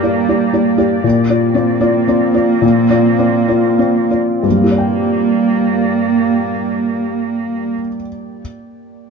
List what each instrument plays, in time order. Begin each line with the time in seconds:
Already playing: felt piano G2 G4 D5, cello A#3, ambient pad A#3 G4 D5
0.03 felt piano A#3 G4 D5
0.29 felt piano G4 D5
0.53 felt piano A#3 G4 D5
0.78 felt piano G4 D5
1.04 felt piano A#2, cello A#3, ambient pad C4 F4
1.29 felt piano F4 D5
1.54 felt piano C4 F4 D5
1.81 felt piano F4 D5
2.08 felt piano C4 F4 D5
2.34 felt piano F4 D5
2.62 felt piano A#2
2.90 felt piano F4 D5
3.18 felt piano C4 F4 D5
3.48 felt piano F4 D5
3.79 felt piano C4 F4 D5
4.10 felt piano F4 D5
4.43 felt piano G2, cello A#3, ambient pad A#3 G4 D5
4.50 felt piano G3
4.57 felt piano A#3
4.64 felt piano G4
4.71 felt piano D5
4.78 felt piano G5